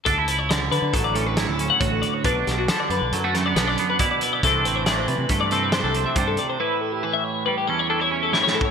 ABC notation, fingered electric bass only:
X:1
M:5/4
L:1/16
Q:1/4=138
K:Dmix
V:1 name="Fingered electric bass" clef=bass
D,,2 ^C,,4 D, D, A,,,4- A,,, D,,2 z A,,,2 z2 | B,,,2 B,,,2 z2 F,, B,,, F,,4 B,,,2 z6 | C,,2 A,,,4 C, C, G,,4- G,, C,,2 z G,,2 z2 | z16 z4 |]